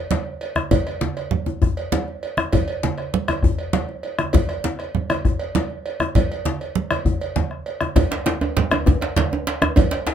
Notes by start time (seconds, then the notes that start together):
0.11 bombo rim, cowbell, djembe slap, high conga, low conga
0.41 cowbell, djembe slap
0.56 bombo rim, high conga, djembe tone
0.71 bombo rim, bombo low, cowbell, djembe bass, low conga
0.87 bombo rim, cowbell
1.01 djembe slap, high conga
1.17 bombo rim, cowbell, djembe slap
1.31 low conga
1.46 high conga, djembe tone
1.62 bombo rim, bombo low, djembe slap, djembe bass
1.77 cowbell
1.92 cowbell, djembe slap, high conga, low conga
2.08 djembe slap
2.23 cowbell, djembe slap
2.37 bombo rim, high conga, djembe tone
2.53 bombo rim, bombo low, cowbell, djembe bass, low conga
2.68 cowbell
2.83 djembe slap, high conga
2.98 bombo rim, cowbell, djembe slap
3.14 low conga
3.28 bombo rim, cowbell, high conga, djembe tone
3.43 bombo rim, bombo low, djembe slap, djembe bass
3.59 cowbell
3.73 cowbell, djembe slap, high conga, low conga
3.88 djembe slap
4.03 cowbell, djembe slap
4.19 bombo rim, djembe tone, high conga
4.33 bombo rim, bombo low, cowbell, djembe bass, low conga
4.49 bombo rim, cowbell
4.64 djembe slap, high conga
4.79 bombo rim, cowbell, djembe slap
4.95 low conga
5.10 bombo rim, cowbell, djembe tone, high conga
5.25 bombo rim, bombo low, djembe slap, djembe bass
5.39 cowbell
5.55 cowbell, djembe slap, high conga, low conga
5.70 djembe slap
5.86 cowbell, djembe slap
6.00 bombo rim, high conga, djembe tone
6.15 bombo low, cowbell, djembe slap, high conga, low conga, djembe bass
6.31 cowbell, djembe slap
6.45 djembe slap, high conga
6.61 cowbell, djembe slap
6.75 low conga
6.90 bombo rim, cowbell, djembe tone, high conga
7.05 bombo low, djembe slap, djembe bass
7.21 cowbell, high conga
7.36 djembe slap, high conga, low conga
7.51 bombo rim
7.66 cowbell, high conga
7.81 bombo rim, djembe tone, high conga
7.96 bombo rim, bombo low, cowbell, djembe tone, djembe bass, low conga
8.11 bombo rim, cowbell, djembe slap
8.26 djembe slap, high conga
8.41 bombo rim, cowbell, djembe slap, djembe tone
8.57 djembe slap, low conga
8.71 bombo rim, cowbell, djembe tone, high conga
8.86 bombo rim, bombo low, djembe slap, djembe tone, djembe bass
9.01 cowbell, djembe slap
9.16 cowbell, djembe slap, high conga, low conga
9.32 djembe slap, djembe tone
9.47 cowbell, djembe slap
9.62 bombo rim, djembe tone, high conga
9.76 bombo rim, bombo low, cowbell, djembe tone, low conga, djembe bass
9.91 bombo rim, cowbell, djembe slap
10.07 djembe slap